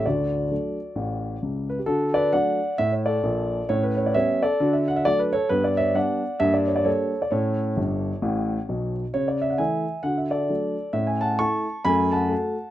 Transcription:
X:1
M:4/4
L:1/16
Q:"Swing" 1/4=132
K:D
V:1 name="Grand piano"
[FAd]12- [FAd]2 B G | [FA]2 [Bd]2 [df]4 e c [Ad]6 | c B c d [ce]2 [Ad]3 e f e d B [Ac]2 | B d [ce]2 [df]4 e d c d [Ac]3 d |
[Ac]12- [Ac]2 z2 | [K:A] c d e f [eg]4 f e [Ad]6 | e g [fa]2 [ac']4 [gb]2 [fa]6 |]
V:2 name="Grand piano" clef=bass
[D,,D,]4 [F,A,D]4 [A,,,A,,]4 [C,,C,]4 | D,4 [F,A,D]4 A,,4 [_B,,,_B,,]4 | [A,,C]4 [G,B,C]4 [D,F]4 [F,A,D]4 | [G,,B,]4 [G,B,D]4 [G,,_B,]4 [G,B,D]4 |
[A,,C]4 [G,,,G,,]4 [A,,,A,,]4 [B,,,B,,]4 | [K:A] C,4 [E,A,E]4 [D,F]4 [F,A,D]4 | [A,,C]4 [A,E]4 [F,,A,]4 [A,F]4 |]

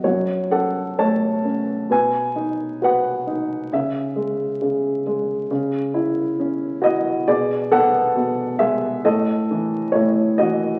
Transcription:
X:1
M:4/4
L:1/8
Q:1/4=67
K:Bmix
V:1 name="Grand piano"
[Fc] [Af] [ca]2 [Bg]2 [Bf]2 | [Ge]3 z4 [Fd] | [G=d] [Af]2 [Ge] [A^d]2 [Ec] [Fd] |]
V:2 name="Grand piano" clef=bass
F,, C A, C B,, D F D | C, G, C, G, C, E C E | B,, B, B,, G, A,, E, A,, E, |]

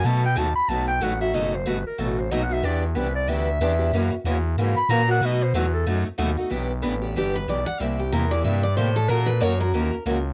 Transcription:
X:1
M:4/4
L:1/8
Q:"Swing" 1/4=186
K:Bphr
V:1 name="Clarinet"
a g a b a g f e | ^d c B ^A =A c (3d f e | d F B d e4- | e2 z3 b ^a f |
^d c B A2 z3 | [K:Clyd] z8 | z8 | z8 |]
V:2 name="Steel-string acoustic guitar"
z8 | z8 | z8 | z8 |
z8 | [K:Clyd] z4 G B d f | e G _B d e d c A | ^A B ^c A3 z2 |]
V:3 name="Steel-string acoustic guitar"
[B,,F,A,^DF] z [B,,F,A,DF] z [B,,F,A,DF] z [B,,F,A,DF] [A,DF] | [B,,F,A,^DF] z [B,,F,A,DF] z [B,,F,A,DF] z [B,,F,A,DF] [A,DF] | [E,B,DG] z [E,B,DG] z [E,B,DG] z [E,B,DG] [B,DG] | [^C,E,^A,^CF] z [C,E,A,CF] z [C,E,A,CF] z [C,E,A,CF] [A,CF] |
[B,,F,A,^DF] z [B,,F,A,DF] z [B,,F,A,DF] z [B,,F,A,DF] [A,DF] | [K:Clyd] [E,B,DG] z [E,B,DG] [B,DG] [E,B,DG] z [E,B,DG] z | [C,G,_B,EG] z [C,G,B,EG] [B,EG] [C,G,B,EG] z [C,G,B,EG] z | [E,^A,^CF^A] z [E,A,CFA] [CFA] [E,A,CFA] z [E,A,CFA] z |]
V:4 name="FM bass" clef=bass
B,,2 ^D,, D,, B,,,2 A,,,2 | F,,,2 G,,, G,,, A,,,2 B,,,2 | E,,2 C,,2 D,,2 E,,2 | F,, F,, E,,2 ^G,, G,, ^A,,2 |
B,,2 E,,2 F,, F,, ^D,, D,, | [K:Clyd] B,,,2 A,,,2 G,,,2 B,,, B,,, | C,,2 E,,2 G,,2 A,,2 | ^A,,2 F,,2 ^D,, D,, ^C,,2 |]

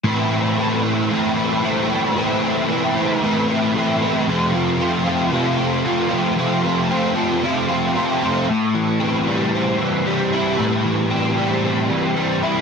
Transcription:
X:1
M:4/4
L:1/8
Q:1/4=114
K:Am
V:1 name="Overdriven electric guitar"
[A,,E,A,CE] [A,CE] [E,A,CE] [A,CE] [A,,E,A,CE] [A,CE] [E,A,CE] [A,CE] | [A,,E,A,CE] [A,CE] [E,A,CE] [A,CE] [A,,E,A,CE] [A,CE] [E,A,CE] [A,CE] | [F,,C,F,A,CF] [F,A,CF] [F,A,CF] [F,A,CF] [F,,C,F,A,CF] [F,A,CF] [F,A,CF] [F,A,CF] | [F,,C,F,A,CF] [F,A,CF] [F,A,CF] [F,A,CF] [F,,C,F,A,CF] [F,A,CF] [F,A,CF] [F,A,CF] |
A,, E, C G, C E, G, E | A,, E, C G, C E, G, E |]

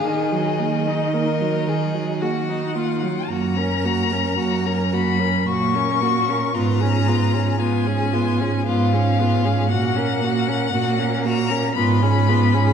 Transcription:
X:1
M:3/4
L:1/16
Q:1/4=56
K:Ebm
V:1 name="Violin"
e8 g4 | [K:F#] a6 b2 c'4 | a4 g4 e4 | f6 a2 b4 |]
V:2 name="Violin"
A4 B2 A2 G2 F2 | [K:F#] F A F A F A F A F A F A | E G E G E G E G E G E G | F A F A F A F A E G E G |]
V:3 name="Viola"
E, G, B, E B, G, E, G, B, E B, G, | [K:F#] A, C A, C A, C A, C A, C A, C | B, C B, C B, C B, C B, C B, C | A, C A, C A, C A, C B, C B, C |]
V:4 name="Cello" clef=bass
E,12 | [K:F#] F,,4 F,,4 A,,4 | G,,4 G,,4 G,,4 | A,,4 A,,4 G,,4 |]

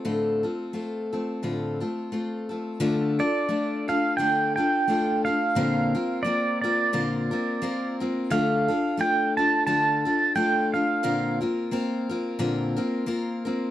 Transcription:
X:1
M:4/4
L:1/8
Q:"Swing" 1/4=88
K:Dm
V:1 name="Pedal steel guitar"
z8 | z d2 f g g2 f- | f2 d d4 z | f2 g a a2 g f- |
f z6 z |]
V:2 name="Steel-string acoustic guitar"
[A,,D,A,CFA] [A,CFA] [A,CFA] [A,CFA] [A,,D,A,CFA] [A,CFA] [A,CFA] [A,CFA] | [D,A,DFA] [DFA] [A,DFA] [DFA] [D,A,DFA] [DFA] [A,DFA] [DFA] | [B,,D,B,CFB] [B,CFB] [B,CFB] [B,CFB] [B,,D,B,CFB] [B,CFB] [B,CFB] [B,CFB] | [D,A,DFA] [DFA] [A,DFA] [DFA] [D,A,DFA] [DFA] [A,DFA] [DFA] |
[B,,D,B,CFB] [B,CFB] [B,CFB] [B,CFB] [B,,D,B,CFB] [B,CFB] [B,CFB] [B,CFB] |]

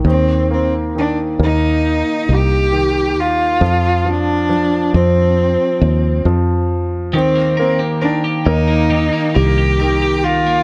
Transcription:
X:1
M:4/4
L:1/16
Q:1/4=68
K:Eblyd
V:1 name="Clean electric guitar"
z16 | z16 | [E,G] B, B G B G B B, [E,G] B, B G B G B B, |]
V:2 name="Cello"
C2 C2 D2 E4 G4 F2- | F2 D4 C6 z4 | C2 C2 D2 E4 G4 F2 |]
V:3 name="Grand piano" clef=bass
E,2 B,2 E,2 B,6 E,4 | F,2 F,2 F,2 F,6 F,4 | E,2 B,2 E,2 B,6 E,4 |]
V:4 name="Fingered electric bass" clef=bass
E,,6 E,,3 z C,,4 E,,2 | F,,6 F,,3 z E,,2 F,,4 | E,,6 E,,3 z C,,6 |]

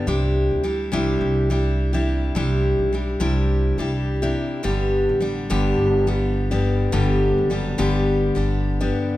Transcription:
X:1
M:4/4
L:1/16
Q:"Swing 16ths" 1/4=105
K:Clyd
V:1 name="Steel-string acoustic guitar"
[C,G,DEG]4 [G,DEG]2 [C,G,DEG]4 [G,DEG]3 [C,G,DEG]3 | [C,G,DEG]4 [G,DEG]2 [C,G,DEG]4 [G,DEG]3 [C,G,DEG]3 | [G,,D,G,B,DG]4 [G,B,DG]2 [G,,D,G,B,DG]4 [G,B,DG]3 [G,,D,G,B,DG]3 | [G,,D,G,B,DG]4 [G,B,DG]2 [G,,D,G,B,DG]4 [G,B,DG]3 [G,,D,G,B,DG]3 |]
V:2 name="Upright bass" clef=bass
C,,3 D,,3 C,,2 C,,8 | C,,3 B,,,3 C,,4 C,,4 z2 | G,,,3 A,,,3 G,,,2 G,,,8 | G,,,3 F,,,3 G,,,4 G,,,4 z2 |]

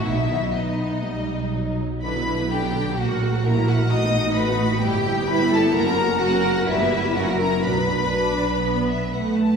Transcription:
X:1
M:4/4
L:1/16
Q:1/4=126
K:Bphr
V:1 name="Violin section"
e4 ^d8- d2 z2 | [K:Bm] b4 g4 f4 ^a2 f2 | ^d'4 b4 g4 b2 a2 | ^a4 f4 e4 f2 a2 |
b8- b2 e2 f2 a2 |]
V:2 name="Violin section"
E4 ^D8- D2 z2 | [K:Bm] B4 G4 F4 ^A2 F2 | ^d4 B4 G4 B2 A2 | ^A4 F4 E4 F2 A2 |
B12 z4 |]
V:3 name="Cello section"
^D12- D2 z2 | [K:Bm] E4 D4 F4 E4 | ^D4 F4 G4 E4 | F4 ^A4 B4 A4 |
B12- B2 z2 |]
V:4 name="Viola section"
[^D,B,] [F,^D] [D,B,] [F,D] B,4 G,4 F,4 | [K:Bm] [D,D] [F,B,] [D,D] [F,B,] [D,D] [F,B,] [D,D] [F,B,] [^A,F] [F,^A] [A,F] [F,A] [A,F] [F,A] [A,F] [F,A] | [A,F] [B,^D] [A,F] [B,D] [A,F] [B,D] [A,F] [B,D] [G,E] [B,G] [G,E] [B,G] [G,E] [B,G] [G,E] [B,G] | [^A,F] [C^A] [A,F] [CA] [A,F] [CA] [A,F] [CA] [G,E] [B,G] [G,E] [B,G] [CE] [A,F] [CE] [A,F] |
[F,D] [B,F] [F,D] [B,F] D4 B,4 A,4 |]
V:5 name="Double bass section" clef=bass
B,,,16- | [K:Bm] B,,,8 ^A,,,8 | A,,,8 G,,,8 | F,,,8 G,,,4 F,,,4 |
B,,,12- B,,,2 z2 |]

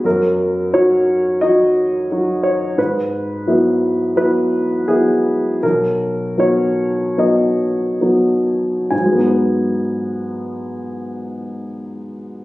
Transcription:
X:1
M:4/4
L:1/8
Q:1/4=80
K:G#m
V:1 name="Grand piano"
A2 c2 d2 z c | B4 B2 G2 | A2 c2 d2 z2 | [G,,F,G,B,DBg]8 |]
V:2 name="Grand piano"
F,,2 [F,DF]2 [F,DF]2 [F,DF]2 | G,,2 [F,B,E]2 [F,B,E]2 [F,B,E]2 | B,,,2 [F,B,D]2 [F,B,D]2 [F,B,D]2 | z8 |]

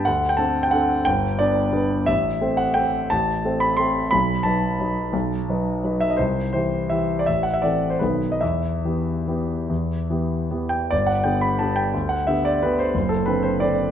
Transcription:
X:1
M:3/4
L:1/16
Q:1/4=174
K:Em
V:1 name="Grand piano"
f3 g a3 g f4 | g4 d4 z4 | e6 f2 g4 | a6 b2 c'4 |
b4 a8- | a8- a2 e ^d | c4 c4 e3 d | e2 f e d3 c B3 ^d |
e12- | e8 z2 g2 | [K:G] d2 f2 g2 b2 a2 g2- | g2 f2 e2 d2 B2 c2- |
c2 A2 B2 c2 d4 |]
V:2 name="Grand piano"
D,,4 [CDA]4 [CDA]4 | G,,,4 [B,DB]4 [B,DB]4 | A,,,4 [A,Cc]4 [A,Cc]4 | A,,,4 [A,Cc]4 [A,Cc]4 |
B,,,4 [F,^DB]4 [F,DB]4 | B,,,4 [F,^DB]4 [F,DB]4 | C,,4 [E,EG]4 [E,EG]4 | A,,,4 [E,CA]4 [B,,,^D,B,A]4 |
E,,4 [E,B,G]4 [E,B,G]4 | E,,4 [E,B,G]4 [E,B,G]4 | [K:G] G,,,4 [D,B,G]4 [D,B,G]4 | D,,4 [D,B,G]4 [D,B,G]4 |
F,,,4 [D,CA]4 [D,CA]4 |]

